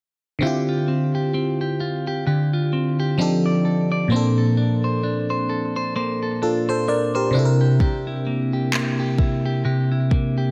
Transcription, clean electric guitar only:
0, 0, Header, 1, 2, 480
1, 0, Start_track
1, 0, Key_signature, -1, "minor"
1, 0, Tempo, 923077
1, 217, Time_signature, 4, 2, 24, 8
1, 5466, End_track
2, 0, Start_track
2, 0, Title_t, "Clean electric guitar"
2, 0, Program_c, 0, 27
2, 219, Note_on_c, 0, 50, 73
2, 221, Note_on_c, 0, 67, 64
2, 357, Note_on_c, 0, 65, 53
2, 458, Note_on_c, 0, 60, 53
2, 595, Note_off_c, 0, 67, 0
2, 597, Note_on_c, 0, 67, 60
2, 695, Note_off_c, 0, 60, 0
2, 697, Note_on_c, 0, 60, 60
2, 835, Note_off_c, 0, 67, 0
2, 838, Note_on_c, 0, 67, 59
2, 936, Note_off_c, 0, 65, 0
2, 938, Note_on_c, 0, 65, 58
2, 1076, Note_off_c, 0, 67, 0
2, 1078, Note_on_c, 0, 67, 58
2, 1176, Note_off_c, 0, 50, 0
2, 1176, Note_off_c, 0, 67, 0
2, 1178, Note_on_c, 0, 50, 76
2, 1182, Note_on_c, 0, 67, 68
2, 1316, Note_off_c, 0, 65, 0
2, 1318, Note_on_c, 0, 65, 52
2, 1417, Note_off_c, 0, 60, 0
2, 1419, Note_on_c, 0, 60, 55
2, 1552, Note_off_c, 0, 67, 0
2, 1558, Note_on_c, 0, 67, 63
2, 1659, Note_on_c, 0, 53, 76
2, 1714, Note_off_c, 0, 67, 0
2, 1797, Note_on_c, 0, 74, 63
2, 1813, Note_off_c, 0, 60, 0
2, 1898, Note_on_c, 0, 69, 57
2, 2034, Note_off_c, 0, 74, 0
2, 2036, Note_on_c, 0, 74, 61
2, 2137, Note_on_c, 0, 58, 77
2, 2139, Note_off_c, 0, 74, 0
2, 2141, Note_on_c, 0, 72, 64
2, 2156, Note_off_c, 0, 50, 0
2, 2275, Note_off_c, 0, 69, 0
2, 2277, Note_on_c, 0, 69, 51
2, 2376, Note_off_c, 0, 65, 0
2, 2378, Note_on_c, 0, 62, 57
2, 2515, Note_off_c, 0, 72, 0
2, 2517, Note_on_c, 0, 72, 61
2, 2611, Note_off_c, 0, 62, 0
2, 2618, Note_on_c, 0, 62, 62
2, 2755, Note_off_c, 0, 72, 0
2, 2757, Note_on_c, 0, 72, 64
2, 2851, Note_off_c, 0, 69, 0
2, 2857, Note_on_c, 0, 69, 61
2, 2995, Note_off_c, 0, 72, 0
2, 2997, Note_on_c, 0, 72, 62
2, 3096, Note_off_c, 0, 58, 0
2, 3098, Note_on_c, 0, 58, 81
2, 3099, Note_off_c, 0, 72, 0
2, 3101, Note_on_c, 0, 72, 64
2, 3231, Note_off_c, 0, 69, 0
2, 3237, Note_on_c, 0, 69, 54
2, 3332, Note_off_c, 0, 62, 0
2, 3338, Note_on_c, 0, 62, 53
2, 3476, Note_off_c, 0, 72, 0
2, 3478, Note_on_c, 0, 72, 63
2, 3479, Note_off_c, 0, 53, 0
2, 3572, Note_off_c, 0, 62, 0
2, 3578, Note_on_c, 0, 62, 60
2, 3715, Note_off_c, 0, 72, 0
2, 3717, Note_on_c, 0, 72, 61
2, 3818, Note_on_c, 0, 48, 74
2, 3873, Note_off_c, 0, 62, 0
2, 3874, Note_off_c, 0, 69, 0
2, 3957, Note_on_c, 0, 67, 63
2, 4052, Note_off_c, 0, 48, 0
2, 4058, Note_on_c, 0, 48, 75
2, 4059, Note_off_c, 0, 67, 0
2, 4061, Note_on_c, 0, 67, 64
2, 4074, Note_off_c, 0, 58, 0
2, 4197, Note_on_c, 0, 64, 56
2, 4298, Note_on_c, 0, 58, 58
2, 4314, Note_off_c, 0, 72, 0
2, 4435, Note_off_c, 0, 67, 0
2, 4437, Note_on_c, 0, 67, 63
2, 4532, Note_off_c, 0, 58, 0
2, 4538, Note_on_c, 0, 58, 62
2, 4676, Note_off_c, 0, 67, 0
2, 4678, Note_on_c, 0, 67, 62
2, 4772, Note_off_c, 0, 64, 0
2, 4778, Note_on_c, 0, 64, 56
2, 4915, Note_off_c, 0, 67, 0
2, 4917, Note_on_c, 0, 67, 63
2, 5010, Note_off_c, 0, 48, 0
2, 5016, Note_on_c, 0, 48, 83
2, 5018, Note_off_c, 0, 67, 0
2, 5020, Note_on_c, 0, 67, 66
2, 5150, Note_off_c, 0, 64, 0
2, 5156, Note_on_c, 0, 64, 54
2, 5251, Note_off_c, 0, 58, 0
2, 5257, Note_on_c, 0, 58, 59
2, 5394, Note_off_c, 0, 67, 0
2, 5396, Note_on_c, 0, 67, 63
2, 5466, Note_off_c, 0, 48, 0
2, 5466, Note_off_c, 0, 58, 0
2, 5466, Note_off_c, 0, 64, 0
2, 5466, Note_off_c, 0, 67, 0
2, 5466, End_track
0, 0, End_of_file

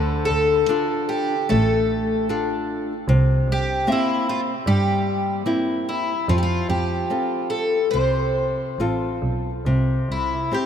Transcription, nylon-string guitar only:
0, 0, Header, 1, 2, 480
1, 0, Start_track
1, 0, Tempo, 798935
1, 1851, Time_signature, 4, 2, 24, 8
1, 3775, Tempo, 827586
1, 4735, Tempo, 857143
1, 6258, End_track
2, 0, Start_track
2, 0, Title_t, "Nylon-string guitar"
2, 0, Program_c, 0, 24
2, 0, Note_on_c, 0, 50, 56
2, 405, Note_off_c, 0, 50, 0
2, 413, Note_on_c, 0, 62, 39
2, 417, Note_on_c, 0, 65, 35
2, 421, Note_on_c, 0, 69, 42
2, 803, Note_off_c, 0, 62, 0
2, 805, Note_off_c, 0, 65, 0
2, 807, Note_off_c, 0, 69, 0
2, 896, Note_on_c, 0, 57, 63
2, 1361, Note_off_c, 0, 57, 0
2, 1377, Note_on_c, 0, 62, 42
2, 1379, Note_on_c, 0, 65, 43
2, 1383, Note_on_c, 0, 69, 49
2, 1756, Note_off_c, 0, 62, 0
2, 1756, Note_off_c, 0, 65, 0
2, 1759, Note_off_c, 0, 69, 0
2, 1855, Note_on_c, 0, 48, 61
2, 2315, Note_off_c, 0, 48, 0
2, 2326, Note_on_c, 0, 58, 37
2, 2328, Note_on_c, 0, 60, 37
2, 2332, Note_on_c, 0, 76, 44
2, 2711, Note_off_c, 0, 58, 0
2, 2712, Note_off_c, 0, 60, 0
2, 2714, Note_off_c, 0, 76, 0
2, 2809, Note_on_c, 0, 55, 59
2, 3274, Note_off_c, 0, 55, 0
2, 3278, Note_on_c, 0, 58, 39
2, 3279, Note_on_c, 0, 60, 40
2, 3283, Note_on_c, 0, 64, 46
2, 3672, Note_off_c, 0, 60, 0
2, 3673, Note_off_c, 0, 58, 0
2, 3675, Note_off_c, 0, 64, 0
2, 3780, Note_on_c, 0, 53, 56
2, 4241, Note_off_c, 0, 53, 0
2, 4249, Note_on_c, 0, 60, 31
2, 4252, Note_on_c, 0, 65, 32
2, 4255, Note_on_c, 0, 69, 36
2, 4636, Note_off_c, 0, 60, 0
2, 4638, Note_off_c, 0, 65, 0
2, 4639, Note_off_c, 0, 69, 0
2, 4733, Note_on_c, 0, 48, 52
2, 5200, Note_off_c, 0, 48, 0
2, 5216, Note_on_c, 0, 60, 36
2, 5218, Note_on_c, 0, 65, 32
2, 5222, Note_on_c, 0, 69, 39
2, 5604, Note_off_c, 0, 60, 0
2, 5604, Note_off_c, 0, 65, 0
2, 5607, Note_off_c, 0, 69, 0
2, 5701, Note_on_c, 0, 48, 50
2, 6162, Note_off_c, 0, 48, 0
2, 6178, Note_on_c, 0, 60, 37
2, 6183, Note_on_c, 0, 64, 31
2, 6184, Note_on_c, 0, 67, 41
2, 6258, Note_off_c, 0, 60, 0
2, 6258, Note_off_c, 0, 64, 0
2, 6258, Note_off_c, 0, 67, 0
2, 6258, End_track
0, 0, End_of_file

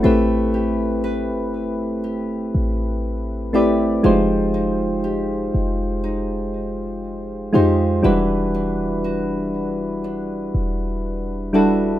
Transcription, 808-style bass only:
0, 0, Header, 1, 2, 480
1, 0, Start_track
1, 0, Tempo, 1000000
1, 20, Time_signature, 4, 2, 24, 8
1, 5757, End_track
2, 0, Start_track
2, 0, Title_t, "808-style bass"
2, 0, Program_c, 0, 38
2, 21, Note_on_c, 0, 33, 105
2, 631, Note_on_c, 0, 31, 96
2, 639, Note_off_c, 0, 33, 0
2, 1202, Note_off_c, 0, 31, 0
2, 1222, Note_on_c, 0, 33, 113
2, 1922, Note_off_c, 0, 33, 0
2, 1942, Note_on_c, 0, 29, 108
2, 2642, Note_off_c, 0, 29, 0
2, 2662, Note_on_c, 0, 29, 109
2, 3602, Note_off_c, 0, 29, 0
2, 3621, Note_on_c, 0, 41, 107
2, 3851, Note_off_c, 0, 41, 0
2, 3861, Note_on_c, 0, 28, 109
2, 5041, Note_off_c, 0, 28, 0
2, 5062, Note_on_c, 0, 28, 111
2, 5757, Note_off_c, 0, 28, 0
2, 5757, End_track
0, 0, End_of_file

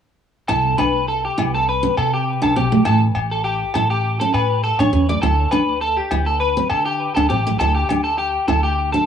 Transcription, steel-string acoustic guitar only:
0, 0, Header, 1, 2, 480
1, 0, Start_track
1, 0, Key_signature, 0, "major"
1, 0, Tempo, 591716
1, 401, Time_signature, 4, 2, 24, 8
1, 7350, End_track
2, 0, Start_track
2, 0, Title_t, "Steel-string acoustic guitar"
2, 0, Program_c, 0, 25
2, 395, Note_on_c, 0, 64, 67
2, 560, Note_off_c, 0, 64, 0
2, 634, Note_on_c, 0, 62, 64
2, 800, Note_off_c, 0, 62, 0
2, 1117, Note_on_c, 0, 64, 64
2, 1282, Note_off_c, 0, 64, 0
2, 1482, Note_on_c, 0, 60, 60
2, 1648, Note_off_c, 0, 60, 0
2, 1961, Note_on_c, 0, 62, 54
2, 2040, Note_off_c, 0, 62, 0
2, 2079, Note_on_c, 0, 60, 56
2, 2167, Note_off_c, 0, 60, 0
2, 2207, Note_on_c, 0, 57, 64
2, 2284, Note_off_c, 0, 57, 0
2, 2313, Note_on_c, 0, 64, 76
2, 2479, Note_off_c, 0, 64, 0
2, 3043, Note_on_c, 0, 64, 66
2, 3206, Note_off_c, 0, 64, 0
2, 3415, Note_on_c, 0, 61, 62
2, 3577, Note_off_c, 0, 61, 0
2, 3893, Note_on_c, 0, 62, 57
2, 3968, Note_off_c, 0, 62, 0
2, 3997, Note_on_c, 0, 61, 55
2, 4085, Note_off_c, 0, 61, 0
2, 4130, Note_on_c, 0, 57, 58
2, 4206, Note_off_c, 0, 57, 0
2, 4242, Note_on_c, 0, 64, 76
2, 4406, Note_off_c, 0, 64, 0
2, 4480, Note_on_c, 0, 62, 70
2, 4644, Note_off_c, 0, 62, 0
2, 4960, Note_on_c, 0, 64, 72
2, 5124, Note_off_c, 0, 64, 0
2, 5328, Note_on_c, 0, 60, 62
2, 5492, Note_off_c, 0, 60, 0
2, 5813, Note_on_c, 0, 62, 64
2, 5888, Note_off_c, 0, 62, 0
2, 5920, Note_on_c, 0, 60, 60
2, 6007, Note_off_c, 0, 60, 0
2, 6057, Note_on_c, 0, 57, 61
2, 6130, Note_off_c, 0, 57, 0
2, 6170, Note_on_c, 0, 64, 80
2, 6330, Note_off_c, 0, 64, 0
2, 6412, Note_on_c, 0, 62, 68
2, 6571, Note_off_c, 0, 62, 0
2, 6879, Note_on_c, 0, 64, 68
2, 7042, Note_off_c, 0, 64, 0
2, 7251, Note_on_c, 0, 62, 63
2, 7350, Note_off_c, 0, 62, 0
2, 7350, End_track
0, 0, End_of_file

